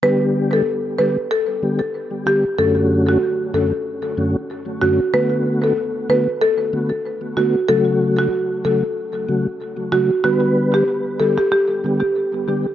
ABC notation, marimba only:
X:1
M:4/4
L:1/16
Q:"Swing 16ths" 1/4=94
K:Glyd
V:1 name="Marimba"
B2 z A z2 B z A3 z3 G z | A z2 F z2 A z6 z F z | B2 z A z2 B z A3 z3 F z | A z2 F z2 A z6 z F z |
F2 z G z2 A G G3 z4 z |]